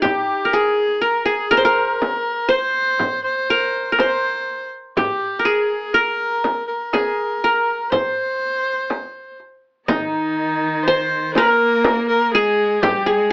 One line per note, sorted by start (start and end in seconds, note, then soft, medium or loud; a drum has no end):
0.00 0.98 D#4 medium
0.00 0.59 G4 medium
0.00 0.56 G4 medium
0.04 frame drum medium
0.04 darbuka dum medium
0.45 1.01 A#4 medium
0.53 1.25 G#4 medium
0.53 1.04 G#4 medium
1.01 1.50 A#4 medium
1.01 1.27 A#4 medium
1.25 2.47 G#4 medium
1.25 1.52 G#4 medium
1.51 1.64 A#4 loud
1.51 1.65 A#4 medium
1.51 darbuka tek medium
1.51 frame drum medium
1.57 2.48 C5 medium
1.65 2.78 A#4 medium
1.65 2.52 A#4 medium
2.02 darbuka tek medium
2.02 frame drum medium
2.49 3.54 C5 medium
2.49 3.23 C5 medium
2.99 darbuka dum medium
2.99 frame drum medium
3.24 3.94 C5 medium
3.50 3.92 A#4 medium
3.92 5.05 A#4 medium
3.98 4.68 C5 medium
3.98 5.05 C5 medium
3.98 darbuka tek medium
3.98 frame drum medium
4.97 5.47 G4 medium
4.97 5.51 G4 medium
4.97 frame drum medium
4.97 darbuka dum medium
5.39 5.94 A#4 medium
5.45 6.66 G#4 medium
5.45 5.94 G#4 medium
5.45 darbuka ka soft
5.93 6.67 A#4 medium
5.93 7.07 A#4 medium
5.93 darbuka ka soft
6.44 darbuka tek medium
6.44 frame drum medium
6.67 7.92 A#4 medium
6.93 8.15 G#4 medium
6.93 darbuka tek medium
6.93 frame drum medium
7.44 8.57 A#4 medium
7.67 darbuka ka soft
7.90 9.38 C5 medium
7.90 9.35 C5 medium
7.90 darbuka dum medium
7.90 frame drum medium
8.90 darbuka tek medium
8.90 frame drum medium
9.40 darbuka ka soft
9.87 11.38 D#3 medium
9.87 10.85 D#4 medium
9.87 11.33 D#4 medium
9.87 frame drum medium
9.87 darbuka dum medium
10.83 11.33 C5 medium
10.87 11.93 C5 loud
10.87 darbuka ka soft
11.34 12.35 A#3 medium
11.34 12.04 A#4 medium
11.34 12.51 A#4 loud
11.34 darbuka tek medium
11.34 frame drum medium
11.84 darbuka tek medium
11.84 frame drum medium
12.08 12.31 A#4 medium
12.33 12.83 G#3 medium
12.33 12.83 G#4 medium
12.33 12.89 G#4 loud
12.81 13.08 G3 medium
12.81 13.10 G4 medium
12.81 13.12 G4 medium
12.81 frame drum medium
12.81 darbuka dum medium
13.06 13.32 G#3 medium
13.06 13.30 G#4 medium
13.06 13.32 G#4 medium